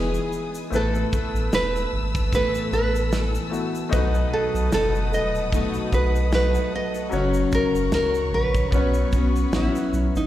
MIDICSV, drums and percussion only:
0, 0, Header, 1, 2, 480
1, 0, Start_track
1, 0, Tempo, 800000
1, 434, Time_signature, 4, 2, 24, 8
1, 6161, End_track
2, 0, Start_track
2, 0, Title_t, "Drums"
2, 85, Note_on_c, 9, 82, 51
2, 145, Note_off_c, 9, 82, 0
2, 195, Note_on_c, 9, 82, 47
2, 255, Note_off_c, 9, 82, 0
2, 328, Note_on_c, 9, 82, 55
2, 388, Note_off_c, 9, 82, 0
2, 437, Note_on_c, 9, 82, 63
2, 497, Note_off_c, 9, 82, 0
2, 568, Note_on_c, 9, 82, 55
2, 628, Note_off_c, 9, 82, 0
2, 677, Note_on_c, 9, 36, 96
2, 678, Note_on_c, 9, 82, 51
2, 737, Note_off_c, 9, 36, 0
2, 738, Note_off_c, 9, 82, 0
2, 813, Note_on_c, 9, 82, 57
2, 873, Note_off_c, 9, 82, 0
2, 917, Note_on_c, 9, 82, 79
2, 918, Note_on_c, 9, 38, 110
2, 977, Note_off_c, 9, 82, 0
2, 978, Note_off_c, 9, 38, 0
2, 1055, Note_on_c, 9, 82, 46
2, 1115, Note_off_c, 9, 82, 0
2, 1289, Note_on_c, 9, 36, 102
2, 1293, Note_on_c, 9, 82, 48
2, 1349, Note_off_c, 9, 36, 0
2, 1353, Note_off_c, 9, 82, 0
2, 1395, Note_on_c, 9, 36, 99
2, 1399, Note_on_c, 9, 82, 75
2, 1455, Note_off_c, 9, 36, 0
2, 1459, Note_off_c, 9, 82, 0
2, 1528, Note_on_c, 9, 82, 55
2, 1588, Note_off_c, 9, 82, 0
2, 1638, Note_on_c, 9, 82, 49
2, 1698, Note_off_c, 9, 82, 0
2, 1773, Note_on_c, 9, 82, 45
2, 1833, Note_off_c, 9, 82, 0
2, 1874, Note_on_c, 9, 82, 62
2, 1876, Note_on_c, 9, 38, 108
2, 1934, Note_off_c, 9, 82, 0
2, 1936, Note_off_c, 9, 38, 0
2, 2010, Note_on_c, 9, 82, 54
2, 2070, Note_off_c, 9, 82, 0
2, 2120, Note_on_c, 9, 82, 50
2, 2180, Note_off_c, 9, 82, 0
2, 2250, Note_on_c, 9, 82, 57
2, 2310, Note_off_c, 9, 82, 0
2, 2356, Note_on_c, 9, 36, 119
2, 2356, Note_on_c, 9, 82, 65
2, 2416, Note_off_c, 9, 36, 0
2, 2416, Note_off_c, 9, 82, 0
2, 2486, Note_on_c, 9, 82, 61
2, 2546, Note_off_c, 9, 82, 0
2, 2732, Note_on_c, 9, 82, 54
2, 2792, Note_off_c, 9, 82, 0
2, 2834, Note_on_c, 9, 82, 81
2, 2835, Note_on_c, 9, 38, 122
2, 2894, Note_off_c, 9, 82, 0
2, 2895, Note_off_c, 9, 38, 0
2, 2970, Note_on_c, 9, 82, 47
2, 3030, Note_off_c, 9, 82, 0
2, 3079, Note_on_c, 9, 82, 56
2, 3139, Note_off_c, 9, 82, 0
2, 3210, Note_on_c, 9, 82, 52
2, 3270, Note_off_c, 9, 82, 0
2, 3315, Note_on_c, 9, 36, 107
2, 3320, Note_on_c, 9, 82, 76
2, 3375, Note_off_c, 9, 36, 0
2, 3380, Note_off_c, 9, 82, 0
2, 3443, Note_on_c, 9, 82, 54
2, 3503, Note_off_c, 9, 82, 0
2, 3555, Note_on_c, 9, 36, 85
2, 3556, Note_on_c, 9, 82, 49
2, 3615, Note_off_c, 9, 36, 0
2, 3616, Note_off_c, 9, 82, 0
2, 3692, Note_on_c, 9, 82, 48
2, 3752, Note_off_c, 9, 82, 0
2, 3793, Note_on_c, 9, 82, 52
2, 3796, Note_on_c, 9, 38, 116
2, 3853, Note_off_c, 9, 82, 0
2, 3856, Note_off_c, 9, 38, 0
2, 3927, Note_on_c, 9, 82, 54
2, 3987, Note_off_c, 9, 82, 0
2, 4167, Note_on_c, 9, 82, 62
2, 4227, Note_off_c, 9, 82, 0
2, 4271, Note_on_c, 9, 82, 67
2, 4331, Note_off_c, 9, 82, 0
2, 4402, Note_on_c, 9, 82, 54
2, 4462, Note_off_c, 9, 82, 0
2, 4513, Note_on_c, 9, 82, 48
2, 4516, Note_on_c, 9, 36, 97
2, 4573, Note_off_c, 9, 82, 0
2, 4576, Note_off_c, 9, 36, 0
2, 4652, Note_on_c, 9, 82, 57
2, 4712, Note_off_c, 9, 82, 0
2, 4752, Note_on_c, 9, 82, 79
2, 4753, Note_on_c, 9, 38, 123
2, 4812, Note_off_c, 9, 82, 0
2, 4813, Note_off_c, 9, 38, 0
2, 4887, Note_on_c, 9, 82, 45
2, 4947, Note_off_c, 9, 82, 0
2, 5127, Note_on_c, 9, 36, 101
2, 5128, Note_on_c, 9, 82, 47
2, 5187, Note_off_c, 9, 36, 0
2, 5188, Note_off_c, 9, 82, 0
2, 5233, Note_on_c, 9, 36, 102
2, 5236, Note_on_c, 9, 82, 73
2, 5293, Note_off_c, 9, 36, 0
2, 5296, Note_off_c, 9, 82, 0
2, 5363, Note_on_c, 9, 82, 51
2, 5423, Note_off_c, 9, 82, 0
2, 5475, Note_on_c, 9, 82, 47
2, 5476, Note_on_c, 9, 36, 82
2, 5535, Note_off_c, 9, 82, 0
2, 5536, Note_off_c, 9, 36, 0
2, 5615, Note_on_c, 9, 82, 47
2, 5675, Note_off_c, 9, 82, 0
2, 5716, Note_on_c, 9, 82, 56
2, 5718, Note_on_c, 9, 38, 114
2, 5776, Note_off_c, 9, 82, 0
2, 5778, Note_off_c, 9, 38, 0
2, 5853, Note_on_c, 9, 82, 53
2, 5913, Note_off_c, 9, 82, 0
2, 5961, Note_on_c, 9, 82, 52
2, 6021, Note_off_c, 9, 82, 0
2, 6094, Note_on_c, 9, 82, 56
2, 6154, Note_off_c, 9, 82, 0
2, 6161, End_track
0, 0, End_of_file